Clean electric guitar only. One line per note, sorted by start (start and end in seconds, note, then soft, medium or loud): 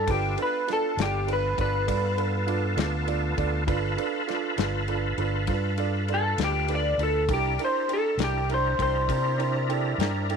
0.00 0.10 A4 medium
0.10 0.38 G4 medium
0.42 0.69 B4 medium
0.73 0.99 A4 medium
1.02 1.29 G4 medium
1.33 1.59 B4 medium
1.61 3.36 B4 medium
6.14 6.40 A4 medium
6.44 6.71 G4 medium
6.75 7.01 D5 medium
7.03 7.30 A4 medium
7.34 7.60 G4 medium
7.65 7.91 C5 medium
7.93 8.20 A4 medium
8.24 8.51 G4 medium
8.54 8.81 C5 medium
8.82 10.37 C5 medium